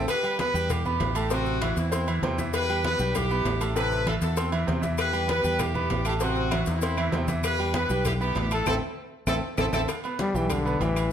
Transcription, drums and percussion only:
0.08 cowbell loud
0.08 high conga soft
0.08 low agogo loud
0.08 maracas medium
0.24 high conga soft
0.24 low agogo medium
0.24 maracas soft
0.39 cowbell medium
0.39 high conga loud
0.39 low timbale medium
0.39 low agogo medium
0.39 maracas soft
0.55 high conga soft
0.55 maracas medium
0.70 cowbell loud
0.70 high conga soft
0.70 low conga medium
0.70 low agogo loud
0.70 maracas loud
0.85 high conga soft
0.85 low conga medium
0.85 maracas soft
1.00 cowbell medium
1.00 high conga medium
1.00 low timbale medium
1.00 low agogo medium
1.00 maracas soft
1.15 cowbell medium
1.15 high conga soft
1.15 low agogo loud
1.15 maracas medium
1.30 cowbell loud
1.30 high conga soft
1.30 maracas medium
1.46 high conga soft
1.46 maracas soft
1.61 cowbell medium
1.61 high conga loud
1.61 low timbale medium
1.61 low agogo loud
1.61 maracas soft
1.77 cowbell medium
1.77 high conga soft
1.77 maracas medium
1.92 cowbell loud
1.92 high conga soft
1.92 low agogo medium
1.92 maracas medium
2.07 high conga soft
2.07 low agogo loud
2.07 maracas soft
2.23 cowbell medium
2.23 high conga medium
2.23 low timbale medium
2.23 maracas soft
2.39 cowbell medium
2.39 high conga medium
2.39 maracas medium
2.53 cowbell loud
2.53 low agogo loud
2.53 maracas medium
2.69 high conga soft
2.69 low agogo medium
2.69 maracas soft
2.84 cowbell medium
2.84 high conga loud
2.84 low timbale medium
2.84 low agogo medium
2.84 maracas soft
2.99 high conga soft
2.99 maracas medium
3.15 cowbell loud
3.15 high conga soft
3.15 low conga medium
3.15 low agogo loud
3.15 maracas medium
3.30 high conga soft
3.30 maracas soft
3.45 cowbell medium
3.45 high conga medium
3.45 low timbale medium
3.45 low agogo medium
3.45 maracas soft
3.61 cowbell medium
3.61 high conga soft
3.61 low agogo loud
3.61 maracas medium
3.76 cowbell loud
3.76 high conga soft
3.76 maracas medium
3.91 high conga soft
3.91 maracas soft
4.06 cowbell medium
4.06 high conga loud
4.06 low timbale medium
4.06 low agogo loud
4.06 maracas soft
4.22 cowbell medium
4.22 high conga soft
4.22 maracas medium
4.37 cowbell loud
4.37 high conga soft
4.37 low agogo medium
4.37 maracas loud
4.52 low agogo loud
4.52 maracas soft
4.68 cowbell medium
4.68 high conga medium
4.68 low timbale medium
4.68 maracas soft
4.83 cowbell medium
4.83 high conga medium
4.83 maracas medium
4.98 cowbell loud
4.98 high conga soft
4.98 low agogo loud
4.98 claves medium
4.98 maracas medium
5.13 high conga soft
5.13 low agogo medium
5.13 maracas soft
5.29 cowbell medium
5.29 high conga loud
5.29 low timbale medium
5.29 low agogo medium
5.29 maracas soft
5.44 high conga soft
5.44 maracas medium
5.59 cowbell loud
5.59 high conga soft
5.59 low conga medium
5.59 low agogo loud
5.59 claves medium
5.59 maracas loud
5.75 high conga soft
5.75 low conga medium
5.75 maracas soft
5.90 cowbell medium
5.90 high conga medium
5.90 low timbale loud
5.90 low agogo medium
5.90 maracas soft
6.05 cowbell medium
6.05 high conga soft
6.05 low agogo loud
6.05 claves medium
6.05 maracas medium
6.20 cowbell loud
6.20 maracas loud
6.36 high conga soft
6.36 maracas soft
6.51 cowbell medium
6.51 high conga loud
6.51 low timbale medium
6.51 low agogo loud
6.51 claves medium
6.51 maracas soft
6.66 cowbell medium
6.66 high conga soft
6.66 maracas medium
6.82 cowbell loud
6.82 high conga soft
6.82 low agogo medium
6.82 maracas medium
6.97 high conga soft
6.97 low agogo loud
6.97 claves medium
6.97 maracas soft
7.12 cowbell medium
7.12 high conga medium
7.12 low timbale medium
7.12 maracas soft
7.28 cowbell medium
7.28 high conga medium
7.28 maracas medium
7.43 cowbell loud
7.43 high conga soft
7.43 low agogo loud
7.43 claves medium
7.43 maracas medium
7.58 high conga soft
7.58 low agogo medium
7.58 maracas soft
7.74 cowbell medium
7.74 high conga loud
7.74 low timbale medium
7.74 low agogo medium
7.74 maracas soft
7.89 high conga soft
7.89 maracas medium
8.05 cowbell loud
8.05 high conga soft
8.05 low conga medium
8.05 low agogo loud
8.05 claves medium
8.05 maracas loud
8.21 high conga soft
8.21 maracas soft
8.35 cowbell medium
8.35 high conga medium
8.35 low timbale medium
8.35 low agogo medium
8.35 maracas soft
8.51 cowbell medium
8.51 high conga soft
8.51 low agogo loud
8.51 claves medium
8.51 maracas medium
8.66 cowbell loud
8.66 high conga loud
8.66 high timbale loud
8.66 claves loud
8.66 maracas loud
9.27 cowbell loud
9.27 high conga loud
9.27 high timbale loud
9.27 claves loud
9.27 maracas loud
9.58 cowbell loud
9.58 high conga loud
9.58 high timbale loud
9.58 claves loud
9.58 maracas loud
9.73 cowbell loud
9.73 high conga loud
9.73 high timbale loud
9.73 claves loud
9.73 maracas loud
9.88 cowbell loud
9.88 high conga soft
9.88 low agogo loud
9.88 claves medium
9.88 maracas medium
10.04 high conga soft
10.04 low agogo medium
10.04 maracas soft
10.19 cowbell medium
10.19 high conga medium
10.19 low timbale medium
10.19 low agogo medium
10.19 maracas soft
10.35 high conga soft
10.35 maracas medium
10.50 cowbell loud
10.50 high conga soft
10.50 low conga medium
10.50 low agogo loud
10.50 claves medium
10.50 maracas medium
10.66 high conga soft
10.66 maracas soft
10.81 cowbell medium
10.81 high conga medium
10.81 low timbale medium
10.81 low agogo medium
10.81 maracas soft
10.96 cowbell medium
10.96 low agogo loud
10.96 claves medium
10.96 maracas medium

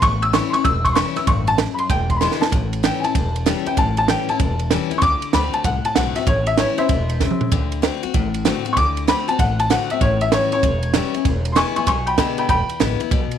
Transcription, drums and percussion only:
0.02 kick loud
0.02 ride medium
0.22 ride medium
0.34 snare loud
0.34 ride medium
0.54 ride medium
0.65 kick loud
0.65 ride medium
0.85 kick medium
0.85 ride medium
0.96 snare loud
0.96 ride loud
1.16 snare soft
1.16 ride medium
1.27 kick loud
1.27 ride medium
1.47 ride medium
1.58 snare loud
1.58 ride medium
1.78 ride medium
1.90 kick loud
1.90 ride medium
2.10 kick medium
2.10 ride medium
2.21 snare medium
2.31 snare medium
2.42 snare loud
2.52 kick loud
2.52 ride medium
2.73 ride medium
2.84 snare loud
2.84 ride medium
3.04 ride medium
3.15 kick loud
3.15 ride medium
3.36 ride medium
3.46 snare loud
3.46 ride loud
3.66 ride medium
3.77 kick loud
3.77 ride medium
3.97 ride medium
4.08 snare loud
4.08 ride medium
4.29 ride medium
4.40 kick loud
4.40 ride medium
4.59 ride medium
4.71 snare loud
4.71 ride medium
4.91 ride medium
5.02 kick loud
5.02 ride medium
5.22 ride medium
5.33 snare loud
5.33 ride medium
5.53 ride medium
5.64 kick loud
5.64 ride loud
5.85 ride medium
5.96 snare loud
5.96 ride loud
6.16 snare soft
6.16 ride medium
6.27 kick loud
6.27 ride medium
6.47 ride medium
6.57 snare loud
6.57 ride medium
6.78 ride medium
6.89 kick loud
6.89 ride medium
7.09 ride medium
7.20 kick medium
7.20 snare medium
7.31 mid tom medium
7.41 floor tom loud
7.52 kick loud
7.52 ride medium
7.72 ride medium
7.83 snare loud
7.83 ride medium
8.03 ride medium
8.14 kick loud
8.14 ride medium
8.34 ride medium
8.45 snare loud
8.45 ride loud
8.66 ride medium
8.77 kick loud
8.77 ride medium
8.97 ride medium
9.08 snare loud
9.08 ride medium
9.29 ride medium
9.39 kick loud
9.39 ride medium
9.60 ride medium
9.70 snare loud
9.70 ride loud
9.90 ride medium
10.01 kick loud
10.01 ride medium
10.21 ride medium
10.32 snare loud
10.32 ride medium
10.52 ride medium
10.63 kick loud
10.63 ride medium
10.83 ride medium
10.94 snare loud
10.94 ride medium
11.14 ride medium
11.25 kick loud
11.25 ride medium
11.45 ride medium
11.56 snare loud
11.56 ride loud
11.76 ride medium
11.87 kick loud
11.87 ride loud
12.07 ride medium
12.18 kick medium
12.18 snare loud
12.18 ride loud
12.38 ride medium
12.49 kick loud
12.49 ride medium
12.69 ride medium
12.80 snare loud
12.80 ride medium
13.00 ride medium
13.11 kick loud
13.11 ride medium
13.31 ride medium

